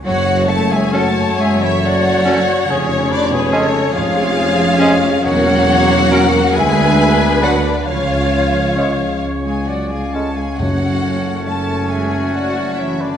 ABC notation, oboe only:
X:1
M:6/8
L:1/16
Q:3/8=46
K:F#m
V:1 name="Oboe"
z4 A z4 z A z | z4 G z4 z G z | z4 ^A z4 z B z | z4 c z c2 d2 c2 |
c12 |]